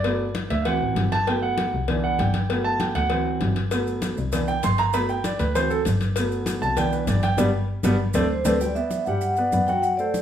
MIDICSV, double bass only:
0, 0, Header, 1, 2, 480
1, 0, Start_track
1, 0, Key_signature, 1, "major"
1, 0, Tempo, 305966
1, 69, Time_signature, 4, 2, 24, 8
1, 16032, End_track
2, 0, Start_track
2, 0, Title_t, "Double bass"
2, 0, Program_c, 0, 43
2, 0, Note_on_c, 0, 31, 98
2, 701, Note_off_c, 0, 31, 0
2, 787, Note_on_c, 0, 38, 96
2, 1234, Note_off_c, 0, 38, 0
2, 1264, Note_on_c, 0, 33, 74
2, 1490, Note_off_c, 0, 33, 0
2, 1501, Note_on_c, 0, 31, 98
2, 2618, Note_off_c, 0, 31, 0
2, 2715, Note_on_c, 0, 36, 96
2, 3381, Note_off_c, 0, 36, 0
2, 3433, Note_on_c, 0, 31, 104
2, 4544, Note_off_c, 0, 31, 0
2, 4633, Note_on_c, 0, 38, 95
2, 5300, Note_off_c, 0, 38, 0
2, 5348, Note_on_c, 0, 31, 91
2, 6461, Note_off_c, 0, 31, 0
2, 6551, Note_on_c, 0, 36, 91
2, 7219, Note_off_c, 0, 36, 0
2, 7273, Note_on_c, 0, 31, 96
2, 8382, Note_off_c, 0, 31, 0
2, 8468, Note_on_c, 0, 38, 98
2, 9137, Note_off_c, 0, 38, 0
2, 9186, Note_on_c, 0, 31, 99
2, 10298, Note_off_c, 0, 31, 0
2, 10387, Note_on_c, 0, 36, 89
2, 11055, Note_off_c, 0, 36, 0
2, 11102, Note_on_c, 0, 31, 101
2, 11549, Note_off_c, 0, 31, 0
2, 11570, Note_on_c, 0, 31, 103
2, 11755, Note_off_c, 0, 31, 0
2, 12294, Note_on_c, 0, 31, 94
2, 12478, Note_off_c, 0, 31, 0
2, 12775, Note_on_c, 0, 38, 101
2, 12958, Note_off_c, 0, 38, 0
2, 13254, Note_on_c, 0, 38, 100
2, 13438, Note_off_c, 0, 38, 0
2, 14232, Note_on_c, 0, 43, 82
2, 14902, Note_off_c, 0, 43, 0
2, 14945, Note_on_c, 0, 42, 89
2, 16032, Note_off_c, 0, 42, 0
2, 16032, End_track
0, 0, End_of_file